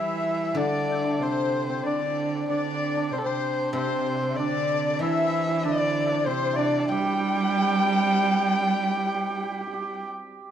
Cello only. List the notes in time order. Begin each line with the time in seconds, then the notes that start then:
Already playing: E3
0.54 D3
1.20 C3
1.82 D3
2.48 D3
3.11 C3
3.24 C3
3.74 C3
4.35 D3
5.01 E3
5.64 D3
6.27 C3
6.89 G3